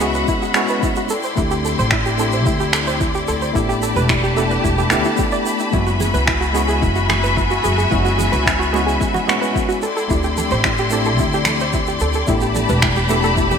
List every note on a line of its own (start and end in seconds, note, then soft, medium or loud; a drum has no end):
0.00 0.23 C#2 medium
0.00 0.55 G#3 medium
0.00 0.55 B3 medium
0.00 0.56 C#4 medium
0.00 0.02 E4 medium
0.00 0.52 E4 medium
0.00 0.02 F#4 medium
0.00 1.06 F#4 medium
0.00 0.53 F#4 medium
0.00 0.14 G#4 medium
0.00 1.06 E5 medium
0.00 1.08 F#5 medium
0.00 1.06 B5 medium
0.00 shaker medium
0.14 0.28 B4 medium
0.14 shaker soft
0.27 0.41 E4 loud
0.27 kick loud
0.27 shaker medium
0.42 0.55 F#4 medium
0.42 shaker soft
0.54 1.08 G#3 medium
0.54 1.08 B3 medium
0.54 1.08 C#4 medium
0.54 1.08 E4 medium
0.54 1.09 F#4 loud
0.54 0.68 G#4 medium
0.54 finger snap medium
0.54 shaker medium
0.68 0.82 B4 medium
0.68 shaker soft
0.83 0.96 E4 medium
0.83 kick loud
0.83 shaker medium
0.96 1.09 F#4 medium
0.96 shaker soft
1.09 3.53 E4 medium
1.09 1.23 A4 loud
1.09 5.70 D5 medium
1.09 3.53 G5 medium
1.09 3.53 C6 medium
1.09 shaker medium
1.23 1.37 C5 medium
1.23 shaker medium
1.36 1.73 D2 medium
1.36 2.15 A3 medium
1.36 2.15 C4 medium
1.36 2.16 D4 medium
1.36 1.50 E4 loud
1.36 2.16 E4 medium
1.36 2.17 G4 medium
1.36 kick loud
1.36 shaker medium
1.51 1.64 G4 medium
1.51 shaker soft
1.65 1.77 A4 medium
1.65 shaker medium
1.79 2.46 A1 medium
1.79 1.91 C5 loud
1.79 shaker soft
1.91 2.05 E4 medium
1.91 finger snap medium
1.91 kick loud
1.91 shaker soft
2.06 2.18 G4 loud
2.06 shaker soft
2.17 3.51 A3 medium
2.17 3.52 C4 medium
2.17 3.52 D4 medium
2.17 3.52 E4 medium
2.17 3.53 G4 medium
2.17 2.32 A4 loud
2.17 shaker medium
2.32 2.46 C5 medium
2.32 shaker soft
2.46 3.23 D2 medium
2.46 2.59 E4 loud
2.46 kick loud
2.46 shaker medium
2.60 2.73 G4 medium
2.60 shaker soft
2.73 2.86 A4 medium
2.73 finger snap medium
2.73 shaker medium
2.87 3.00 C5 medium
2.87 shaker medium
3.01 3.13 E4 medium
3.01 kick loud
3.01 shaker medium
3.15 3.27 G4 loud
3.15 shaker soft
3.28 3.49 D2 medium
3.28 3.41 A4 loud
3.28 shaker medium
3.42 3.55 C5 medium
3.42 shaker soft
3.54 3.91 A1 medium
3.54 4.33 A3 medium
3.54 4.34 B3 medium
3.54 4.34 D4 medium
3.54 3.68 E4 loud
3.54 4.34 E4 medium
3.54 5.72 G4 medium
3.54 4.35 G4 medium
3.54 5.72 A5 medium
3.54 9.79 B5 medium
3.54 kick loud
3.54 shaker medium
3.69 3.82 G4 loud
3.69 shaker soft
3.82 3.95 A4 medium
3.82 shaker medium
3.96 4.59 E1 medium
3.96 4.09 B4 loud
3.96 shaker medium
4.09 4.22 E4 medium
4.09 finger snap medium
4.09 kick loud
4.09 shaker medium
4.23 4.36 G4 loud
4.23 shaker soft
4.37 4.88 A3 medium
4.37 4.88 B3 medium
4.37 4.88 D4 medium
4.37 4.89 E4 medium
4.37 4.89 G4 medium
4.37 4.50 A4 loud
4.37 shaker medium
4.50 4.64 B4 medium
4.50 shaker soft
4.64 4.85 E1 medium
4.64 4.77 E4 loud
4.64 kick medium
4.64 shaker medium
4.78 4.91 G4 loud
4.78 shaker soft
4.90 5.03 D2 medium
4.90 5.69 A3 medium
4.90 5.70 B3 medium
4.90 5.70 D4 medium
4.90 5.04 E4 medium
4.90 5.70 E4 medium
4.90 5.71 G4 medium
4.90 finger snap medium
4.90 shaker medium
5.04 5.17 E4 loud
5.04 shaker soft
5.17 5.31 G4 medium
5.17 kick loud
5.17 shaker medium
5.32 5.45 D5 medium
5.32 shaker soft
5.46 5.59 G4 medium
5.46 shaker medium
5.59 5.72 E4 medium
5.59 shaker soft
5.72 6.09 F#1 medium
5.72 6.51 G#3 medium
5.72 6.52 B3 medium
5.72 6.52 C#4 medium
5.72 5.86 E4 loud
5.72 6.52 E4 medium
5.72 9.78 F#4 medium
5.72 6.53 F#4 medium
5.72 9.79 E5 medium
5.72 9.78 G#5 medium
5.72 kick loud
5.72 shaker medium
5.87 6.00 F#4 medium
5.87 shaker soft
6.00 6.13 G#4 medium
6.00 low conga medium
6.00 shaker medium
6.14 6.84 C#2 medium
6.14 6.27 B4 loud
6.14 muted conga medium
6.14 shaker soft
6.28 6.40 E4 medium
6.28 finger snap medium
6.28 kick loud
6.28 shaker medium
6.41 6.53 F#4 loud
6.41 shaker soft
6.53 7.87 G#3 medium
6.53 7.88 B3 medium
6.53 7.88 C#4 medium
6.53 7.88 E4 medium
6.53 7.89 F#4 medium
6.53 6.67 G#4 loud
6.53 shaker medium
6.68 6.76 G#4 loud
6.68 shaker medium
6.82 7.59 F#1 medium
6.82 6.95 E4 medium
6.82 kick medium
6.82 shaker medium
6.96 7.09 F#4 loud
6.96 shaker soft
7.09 7.22 G#4 medium
7.09 finger snap medium
7.09 high conga medium
7.09 low conga medium
7.09 shaker medium
7.23 7.36 B4 medium
7.23 shaker soft
7.37 7.49 E4 medium
7.37 kick loud
7.37 shaker medium
7.51 7.63 F#4 loud
7.51 shaker soft
7.64 7.86 F#1 medium
7.64 7.77 G#4 medium
7.64 shaker medium
7.78 7.85 G#4 loud
7.78 shaker soft
7.91 8.28 F#1 medium
7.91 8.70 G#3 medium
7.91 8.70 B3 medium
7.91 8.71 C#4 medium
7.91 8.04 E4 loud
7.91 8.71 E4 medium
7.91 8.71 F#4 medium
7.91 kick medium
7.91 shaker medium
8.05 8.18 F#4 medium
8.05 shaker soft
8.18 8.31 G#4 medium
8.18 low conga medium
8.18 shaker medium
8.32 8.96 C#2 loud
8.32 8.45 B4 loud
8.32 muted conga medium
8.32 shaker soft
8.46 8.58 E4 medium
8.46 finger snap medium
8.46 kick loud
8.46 shaker medium
8.59 8.72 F#4 loud
8.59 shaker soft
8.73 9.25 G#3 medium
8.73 9.25 B3 medium
8.73 9.25 C#4 medium
8.73 9.25 E4 medium
8.73 9.25 F#4 medium
8.73 8.85 G#4 loud
8.73 muted conga medium
8.73 shaker medium
8.86 8.94 G#4 loud
8.86 shaker soft
9.00 9.13 E4 medium
9.00 kick medium
9.00 shaker medium
9.14 9.27 F#4 loud
9.14 low conga medium
9.14 shaker soft
9.27 9.80 G#3 medium
9.27 9.81 B3 medium
9.27 9.81 C#4 medium
9.27 9.81 E4 medium
9.27 9.81 F#4 loud
9.27 9.40 G#4 medium
9.27 finger snap medium
9.27 high conga medium
9.27 shaker medium
9.41 9.54 B4 loud
9.41 shaker medium
9.55 9.67 E4 medium
9.55 kick loud
9.55 shaker medium
9.69 9.81 F#4 loud
9.69 shaker soft
9.82 12.26 E4 medium
9.82 9.95 A4 loud
9.82 13.59 D5 medium
9.82 12.26 G5 medium
9.82 12.26 C6 medium
9.82 shaker medium
9.97 10.04 A4 loud
9.97 shaker soft
10.08 10.46 D2 medium
10.08 10.88 A3 medium
10.08 10.88 C4 medium
10.08 10.88 D4 medium
10.08 10.89 E4 medium
10.08 10.22 E4 loud
10.08 10.89 G4 medium
10.08 kick medium
10.08 shaker medium
10.23 10.37 G4 medium
10.23 shaker soft
10.37 10.50 A4 medium
10.37 low conga medium
10.37 shaker medium
10.51 11.19 A1 medium
10.51 10.64 C5 loud
10.51 muted conga medium
10.51 shaker soft
10.64 10.77 E4 medium
10.64 finger snap medium
10.64 kick loud
10.64 shaker soft
10.77 10.91 G4 loud
10.77 shaker soft
10.90 12.24 A3 medium
10.90 12.24 C4 medium
10.90 12.25 D4 medium
10.90 12.25 E4 medium
10.90 12.25 G4 medium
10.90 11.05 A4 loud
10.90 shaker medium
11.05 11.13 A4 loud
11.05 shaker soft
11.18 11.96 D2 medium
11.18 11.32 E4 medium
11.18 kick medium
11.18 shaker medium
11.33 11.46 G4 loud
11.33 shaker soft
11.45 11.59 A4 medium
11.45 finger snap medium
11.45 high conga medium
11.45 low conga medium
11.45 shaker medium
11.60 11.73 C5 medium
11.60 shaker soft
11.73 11.86 E4 medium
11.73 kick loud
11.73 shaker medium
11.87 12.00 G4 loud
11.87 shaker soft
12.00 12.22 D2 medium
12.00 12.14 A4 loud
12.00 shaker medium
12.13 12.22 A4 medium
12.13 shaker soft
12.27 12.64 A1 medium
12.27 13.06 A3 medium
12.27 13.06 B3 medium
12.27 13.07 D4 medium
12.27 12.41 E4 loud
12.27 13.07 E4 medium
12.27 13.59 G4 medium
12.27 13.08 G4 loud
12.27 13.59 A5 medium
12.27 13.59 B5 loud
12.27 kick medium
12.27 shaker medium
12.41 12.55 G4 medium
12.41 shaker soft
12.55 12.68 A4 medium
12.55 low conga medium
12.55 shaker medium
12.69 13.59 E1 loud
12.69 12.82 B4 loud
12.69 muted conga medium
12.69 shaker soft
12.82 12.95 E4 medium
12.82 finger snap medium
12.82 kick loud
12.82 shaker soft
12.96 13.09 G4 loud
12.96 high conga medium
12.96 shaker soft
13.09 13.59 A3 medium
13.09 13.59 B3 medium
13.09 13.59 D4 medium
13.09 13.59 E4 medium
13.09 13.59 G4 medium
13.09 13.23 A4 loud
13.09 muted conga medium
13.09 shaker medium
13.23 13.31 A4 loud
13.23 high conga medium
13.23 shaker soft
13.37 13.50 E4 medium
13.37 kick loud
13.37 shaker medium
13.51 13.59 G4 loud
13.51 low conga medium
13.51 shaker soft